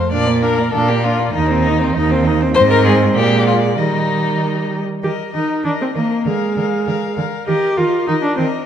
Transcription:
Already playing: violin C5
0.12 cello A#2, viola D4, violin D5 F5
0.29 viola A#3, violin D5
0.42 viola D4, violin A#4 F5
0.59 viola A#3, violin D5
0.73 cello A#2, viola D4, violin A4 F5
0.88 viola A#3, violin G4 D5
1.04 viola D4, violin F4 F5
1.18 viola A#3, violin D5
1.33 cello D#2, violin D#4 D#5, viola D#4
1.48 viola C4, violin C5
1.63 violin D#5
1.67 viola D#4
1.79 viola C4, violin C5
1.95 cello D#2, viola D#4, violin D#5
2.10 viola C4, violin C5
2.25 viola D#4, violin D#5
2.41 viola C4, violin C5
2.55 cello G#2, viola C4, violin C5 D#5
2.71 violin A#4
2.85 violin G#4
3.15 cello A#2, viola G#3, violin G4 D5
3.47 violin F4
3.77 cello D#3, viola G3, violin D#4 D#5
5.03 cello D#3, viola G4, violin A#4 D#5
5.33 cello D#3, viola D#4, violin A#4 D#5
5.64 cello D#3, viola D4, violin A#4 D#5
5.81 viola C4
5.95 cello D#3, viola A#3, violin A#4 D#5
6.25 cello D3, viola G#3, violin A#4 F5
6.56 cello D3, violin A#4 F5
6.86 cello D3, violin A#4 F5
7.16 cello D3, violin A#4 F5
7.47 cello D#3, viola G4, violin A#4 D#5
7.77 cello D#3, viola F4, violin A#4 D#5
8.07 cello D#3, viola D#4, violin A#4 D#5
8.23 viola D4
8.36 cello D#3, viola C4, violin A#4 D#5

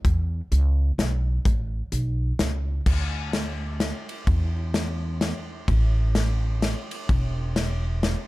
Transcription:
0.05 upright bass E2, kick, closed hi-hat
0.52 upright bass C#2, closed hi-hat
0.98 upright bass B1, snare, closed hi-hat
1.45 upright bass A1, kick, closed hi-hat
1.92 upright bass B1, closed hi-hat
2.39 upright bass C#2, snare, closed hi-hat
2.86 upright bass D2, kick, crash
3.33 snare, ride
3.80 snare, ride
4.09 ride
4.27 upright bass E2, kick, ride
4.74 snare, ride
5.21 snare, ride
5.68 upright bass A1, kick, ride
6.15 snare, ride
6.62 snare, ride
6.91 ride
7.09 upright bass E1, kick, ride
7.56 snare, ride
8.03 snare, ride

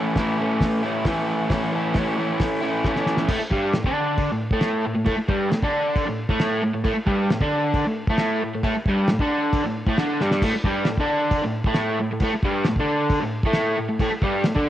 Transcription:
Already playing: overdriven electric guitar A2 E3 A3 C#4 E4
0.15 overdriven electric guitar E3 A3 C#4 E4, kick, snare, open hi-hat
0.38 overdriven electric guitar A3 C#4 E4
0.61 kick, snare, open hi-hat
0.83 overdriven electric guitar A3 C#4 E4
1.05 overdriven electric guitar A2 E3 A3 C#4, kick, snare, open hi-hat
1.10 overdriven electric guitar E4
1.50 overdriven electric guitar A2 E3 A3 C#4, kick, snare, open hi-hat
1.54 overdriven electric guitar E4
1.73 overdriven electric guitar A3 C#4 E4
1.94 overdriven electric guitar E3 A3, kick, snare, open hi-hat
1.99 overdriven electric guitar C#4 E4
2.17 overdriven electric guitar A3 C#4 E4
2.40 kick, snare, open hi-hat
2.61 overdriven electric guitar A3 C#4 E4
2.84 overdriven electric guitar A2 E3 A3 C#4 E4, kick, snare
2.96 snare
3.06 snare
3.17 snare
3.28 overdriven electric guitar A2 A3, kick, crash
3.40 muted overdriven electric guitar stroke
3.51 overdriven electric guitar G2 G3, kick
3.73 overdriven electric guitar A2, snare, crash
3.84 overdriven electric guitar D3 D4, kick
4.18 kick, crash
4.32 overdriven electric guitar A2
4.51 overdriven electric guitar A2 A3, kick
4.61 snare, crash
4.86 overdriven electric guitar A2
4.95 overdriven electric guitar A2
5.06 overdriven electric guitar A2 A3, kick, crash
5.18 muted overdriven electric guitar stroke
5.29 overdriven electric guitar G2 G3, kick
5.50 overdriven electric guitar A2, snare, crash
5.62 overdriven electric guitar D3 D4, kick
5.96 kick, crash
6.07 overdriven electric guitar A2
6.29 overdriven electric guitar A2 A3, kick
6.39 snare, crash
6.63 overdriven electric guitar A2
6.74 overdriven electric guitar A2
6.84 overdriven electric guitar A2 A3, kick, crash
6.95 muted overdriven electric guitar stroke
7.07 overdriven electric guitar G2 G3, kick
7.30 overdriven electric guitar A2, snare, crash
7.41 overdriven electric guitar D3 D4, kick
7.74 kick, crash
7.87 overdriven electric guitar A2
8.07 overdriven electric guitar A2 A3, kick
8.18 snare, crash
8.43 overdriven electric guitar A2
8.55 overdriven electric guitar A2
8.63 overdriven electric guitar A2 A3, kick, crash
8.77 muted overdriven electric guitar stroke
8.86 overdriven electric guitar G2 G3, kick
9.08 overdriven electric guitar A2, snare, crash
9.19 overdriven electric guitar D3 D4, kick
9.53 kick, crash
9.64 overdriven electric guitar A2
9.87 overdriven electric guitar A2 A3, kick
9.98 overdriven electric guitar D3 D4, snare, crash
10.21 overdriven electric guitar G2 G3, snare
10.31 snare
10.42 overdriven electric guitar A2 A3, kick, crash
10.55 muted overdriven electric guitar stroke
10.64 overdriven electric guitar G2 G3, kick
10.85 overdriven electric guitar A2, snare, crash
10.97 overdriven electric guitar D3 D4, kick
11.31 kick, crash
11.44 overdriven electric guitar A2
11.64 overdriven electric guitar A2 A3, kick
11.74 snare, crash
12.01 overdriven electric guitar A2
12.13 overdriven electric guitar A2
12.20 overdriven electric guitar A2, kick, crash
12.24 overdriven electric guitar A3
12.35 muted overdriven electric guitar stroke
12.43 overdriven electric guitar G2 G3, kick
12.64 overdriven electric guitar A2, snare, crash
12.76 overdriven electric guitar D3, kick
12.81 overdriven electric guitar D4
13.10 kick, crash
13.22 overdriven electric guitar A2
13.43 overdriven electric guitar A2 A3, kick
13.53 snare, crash
13.78 overdriven electric guitar A2
13.89 overdriven electric guitar A2
14.00 overdriven electric guitar A2 A3, kick, crash
14.12 muted overdriven electric guitar stroke
14.22 overdriven electric guitar G2 G3, kick
14.44 overdriven electric guitar A2, snare, crash
14.56 overdriven electric guitar D3 D4, kick

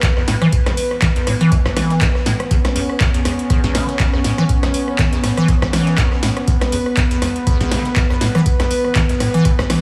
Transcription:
Already playing: analog synth pad B3 B4
0.03 kick, snare, clap, closed hi-hat, tambourine
0.17 acid bass E2, cross-stick, snare
0.28 acid bass A2, snare, open hi-hat, tambourine
0.42 acid bass E3, cross-stick, closed hi-hat
0.52 kick, closed hi-hat, tambourine
0.66 acid bass E2, cross-stick, snare, closed hi-hat
0.77 open hi-hat, tambourine
0.91 cross-stick
1.02 acid bass E3, kick, snare, clap, closed hi-hat, tambourine
1.16 acid bass E2, snare, closed hi-hat
1.27 acid bass A2, cross-stick, snare, open hi-hat, tambourine
1.41 acid bass E3, closed hi-hat
1.52 acid bass E1, kick, cross-stick, closed hi-hat, tambourine
1.65 acid bass E2, kick, cross-stick, snare
1.76 acid bass E3, cross-stick, snare, open hi-hat, tambourine
1.90 snare, closed hi-hat
2.01 acid bass E2, kick, snare, clap, closed hi-hat, tambourine
2.15 cross-stick, snare
2.26 acid bass A2, snare, open hi-hat, tambourine
2.40 cross-stick, closed hi-hat
2.51 acid bass E2, analog synth pad C#4, kick, closed hi-hat, tambourine
2.65 cross-stick, snare, closed hi-hat
2.76 acid bass E2, open hi-hat, tambourine
2.89 cross-stick
3.00 acid bass E2, kick, snare, clap, closed hi-hat, tambourine
3.14 acid bass E2, closed hi-hat
3.25 acid bass E2, cross-stick, snare, open hi-hat, tambourine
3.39 closed hi-hat
3.50 acid bass E2, kick, cross-stick, closed hi-hat, tambourine
3.64 acid bass E2, kick, snare, closed hi-hat
3.75 acid bass D3, cross-stick, snare, open hi-hat, tambourine
3.89 snare, closed hi-hat
4.00 kick, snare, clap, closed hi-hat, tambourine
4.13 acid bass E2, cross-stick, snare
4.24 acid bass A2, snare, open hi-hat, tambourine
4.38 acid bass E3, cross-stick, closed hi-hat
4.49 kick, closed hi-hat, tambourine
4.63 acid bass E2, cross-stick, snare, closed hi-hat
4.74 open hi-hat, tambourine
4.88 cross-stick
4.99 acid bass E3, kick, snare, clap, closed hi-hat, tambourine
5.13 acid bass E2, snare, closed hi-hat
5.24 acid bass A2, cross-stick, snare, open hi-hat, tambourine
5.37 acid bass E3, cross-stick, closed hi-hat
5.48 acid bass E1, kick, cross-stick, closed hi-hat, tambourine
5.62 acid bass E2, kick, cross-stick, snare
5.73 acid bass E3, cross-stick, snare, open hi-hat, tambourine
5.87 snare, closed hi-hat
5.98 acid bass E2, kick, snare, clap, closed hi-hat, tambourine
6.12 cross-stick, snare
6.23 acid bass A2, snare, open hi-hat, tambourine
6.37 cross-stick, closed hi-hat
6.47 acid bass E2, analog synth pad B4, kick, closed hi-hat, tambourine
6.61 cross-stick, snare, closed hi-hat
6.72 acid bass E2, open hi-hat, tambourine
6.86 cross-stick
6.97 acid bass E2, kick, snare, clap, closed hi-hat, tambourine
7.11 acid bass E2, closed hi-hat
7.22 acid bass E2, cross-stick, snare, open hi-hat, tambourine
7.36 closed hi-hat
7.47 acid bass E2, kick, cross-stick, closed hi-hat, tambourine
7.61 acid bass E2, kick, snare, closed hi-hat
7.71 acid bass D3, cross-stick, snare, open hi-hat, tambourine
7.85 snare, closed hi-hat
7.96 kick, snare, clap, closed hi-hat, tambourine
8.10 acid bass E2, cross-stick, snare
8.21 acid bass A2, snare, open hi-hat, tambourine
8.35 acid bass E3, cross-stick, closed hi-hat
8.46 kick, closed hi-hat, tambourine
8.60 acid bass E2, cross-stick, snare, closed hi-hat
8.71 open hi-hat, tambourine
8.85 cross-stick
8.95 acid bass E3, kick, snare, clap, closed hi-hat, tambourine
9.09 acid bass E2, snare, closed hi-hat
9.20 acid bass A2, cross-stick, snare, open hi-hat, tambourine
9.34 acid bass E3, closed hi-hat
9.45 acid bass E1, kick, cross-stick, closed hi-hat, tambourine
9.59 acid bass E2, kick, cross-stick, snare
9.70 acid bass E3, cross-stick, snare, open hi-hat, tambourine

